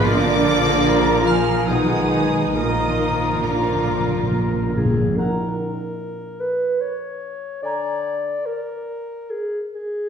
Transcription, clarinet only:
\new Staff \with { instrumentName = "Clarinet" } { \time 3/4 \key bes \phrygian \tempo 4 = 72 f'2 ees'4 | f'4 f'4. aes'8 | bes'4. ces''8 des''4 | d''4 bes'4 aes'8 aes'8 | }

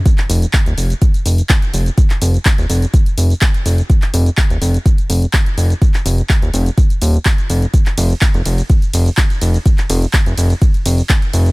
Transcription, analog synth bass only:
\new Staff \with { instrumentName = "Analog synth bass" } { \clef bass \time 4/4 \key ees \lydian \tempo 4 = 125 r8 f,,16 r8 ees,,16 f,,16 r8. f,,16 r8. f,,16 r16 | r8 f,,16 r8 ees,,16 f,,16 r8. f,,16 r8. f,,16 r16 | r8 f,,16 r8 ees,,16 f,,16 r8. f,,16 r8. f,,16 r16 | r8 f,,16 r8 ees,,16 f,,16 r8. ees,,16 r8. f,,16 r16 |
r8 f,,16 r8 f,,16 f,,16 r8. f,,16 r8. f,,16 r16 | r8 f,,16 r8 f,,16 f,,16 r8. f,,16 r8. f,,16 r16 | }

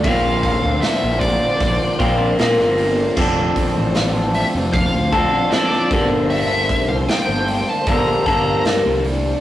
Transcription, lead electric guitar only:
\new Staff \with { instrumentName = "Lead electric guitar" } { \time 4/4 \key g \minor \tempo 4 = 77 f''4 e''8 d''4. r4 | r4. e''8 f''4 d''8. r16 | e''8. f''16 g''8. a''16 bes''4 r4 | }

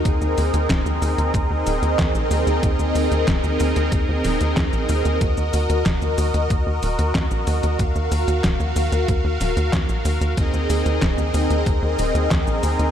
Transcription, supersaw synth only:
\new Staff \with { instrumentName = "Supersaw synth" } { \time 4/4 \key aes \mixolydian \tempo 4 = 93 << { <c' bes' ees''>1~ | <c' bes' ees''>1 | ees''1 | f''1 |
<c' ees' bes' ees''>1 | } \\ { <ees' aes'>1~ | <ees' aes'>1 | ges'1~ | ges'1 |
aes'1 | } >> }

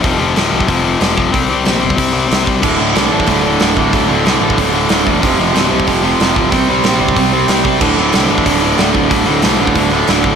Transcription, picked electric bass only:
\new Staff \with { instrumentName = "Picked electric bass" } { \clef bass \time 4/4 \key d \minor \tempo 4 = 185 f,,8 f,,8 d,,8 c,8 f,,4 f,,8 f,,8 | c,8 c,8 bes,,8 g,,8 c,4 c,8 c,8 | d,,8 d,,8 c,8 a,,8 d,,4 d,,8 d,,8 | d,,8 d,,8 c,8 a,,8 d,,4 d,,8 e,,8 |
f,,8 f,,8 d,,8 c,8 f,,4 f,,8 d,,8 | c,8 c,8 bes,,8 g,,8 c,4 c,8 c,8 | d,,8 d,,8 c,8 a,,8 d,,4 d,,8 d,,8 | d,,8 d,,8 c,8 a,,8 d,,4 d,,8 d,,8 | }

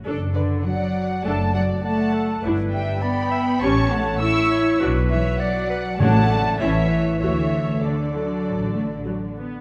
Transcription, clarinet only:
\new Staff \with { instrumentName = "Clarinet" } { \time 4/4 \key d \major \tempo 4 = 100 r2 d''4 d''8 a'8 | b'4 d''8 e''8 cis''4 a'8 cis''8 | b'4 d''8 b'8 cis''8 d''8 cis''8 b'8 | a'2.~ a'8 r8 | }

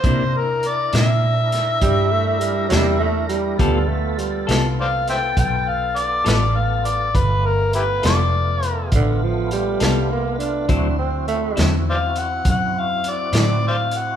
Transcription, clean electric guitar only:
\new Staff \with { instrumentName = "Clean electric guitar" } { \time 12/8 \key g \mixolydian \tempo 4. = 68 <c bes d' e'>8 r4 <c bes d' e'>8 r2 r8 <c bes d' e'>8 r4 | <g b f' a'>8 r4 <g b f' a'>8 r2 r8 <g b f' a'>8 r4 | r4. <g b f' a'>8 r2 r8 <g b f' a'>8 r4 | <d fis c' e'>8 r4 <d fis c' e'>8 r2 r8 <d fis c' e'>8 r4 | }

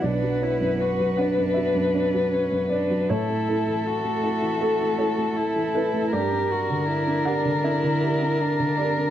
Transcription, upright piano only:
\new Staff \with { instrumentName = "Upright piano" } { \time 4/4 \key b \minor \tempo 4 = 79 << { d''4. fis''8 e''4. d''8 | cis''2 a'8 cis''4 b'8 | d''4. fis''8 e''4. d''8 | } \\ { b,,16 fis16 <d' cis''>16 fis,8 fis16 <d' cis''>16 fis,16 fis16 fis,16 <d' cis''>16 fis8 fis,16 <d' cis''>16 fis16 | a,16 a16 <e' a'>16 e8 a16 e'16 e16 a16 e16 <e' a'>16 a8 e16 <e' a'>16 a16 | g,16 d'16 <g' bes'>16 d8 d'16 <g' bes'>16 d16 d'16 d16 <g' bes'>16 d'8 d16 <g' bes'>16 d'16 | } >> }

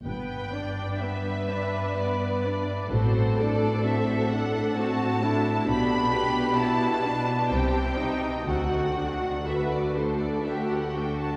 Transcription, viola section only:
\new Staff \with { instrumentName = "Viola section" } { \time 3/4 \key g \major \tempo 4 = 63 <b b'>8 <d' d''>8 <b b'>8 <d' d''>8 <b b'>8 <d' d''>8 | <c' fis'>8 <d' a'>8 <c' fis'>8 <d' a'>8 <c' fis'>8 <d' a'>8 | <b g'>8 <d' b'>8 <b g'>8 <d' b'>8 <c' c''>8 <ees' ees''>8 | <fis' a'>8 <d' fis'>8 <fis' a'>8 <d' fis'>8 <fis' a'>8 <d' fis'>8 | }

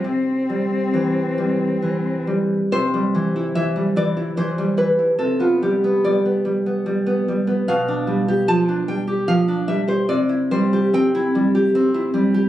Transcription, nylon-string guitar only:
\new Staff \with { instrumentName = "Nylon-string guitar" } { \time 3/4 \key c \major \tempo 4 = 73 << { r2. | c''4 e''8 d''8 c''8 b'8 | a'16 f'16 g'8 d''4. r8 | f''4 a''8 g''8 f''8 e''16 c''16 |
d''8 c''8 g''4. r8 | } \\ { c8 g8 e8 g8 e8 g8 | c16 g16 e16 e'16 e16 g16 e16 e'16 e16 g16 e16 e'16 | c16 b16 g16 b16 g16 b16 g16 b16 g16 b16 g16 b16 | b,16 d'16 g16 g'16 f16 d'16 g16 g'16 f16 d'16 g16 g'16 |
c16 e'16 g16 g'16 c'16 e'16 g16 g'16 c'16 e'16 g16 g'16 | } >> }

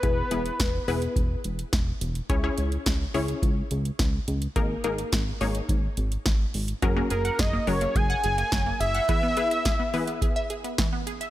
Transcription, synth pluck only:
\new Staff \with { instrumentName = "Synth pluck" } { \time 4/4 \key e \lydian \tempo 4 = 106 <b e' gis' b'>16 r16 <b e' gis' b'>8 r8 <b e' gis' b'>4~ <b e' gis' b'>16 r4 r16 | <cis' e' gis' cis''>16 <cis' e' gis' cis''>8. r8 <cis' e' gis' cis''>4~ <cis' e' gis' cis''>16 r4 r16 | <ais dis' gis' ais'>16 r16 <ais dis' gis' ais'>8 r8 <ais dis' gis' cis''>4~ <ais dis' gis' cis''>16 r4 r16 | <cis' fis' gis' ais'>16 <cis' fis' gis' ais'>8. r8 <cis' fis' gis' ais'>4~ <cis' fis' gis' ais'>16 r4 r16 |
<b e' gis' b'>16 r16 <b e' gis' b'>8 r8 <b e' gis' b'>4~ <b e' gis' b'>16 r4 r16 | }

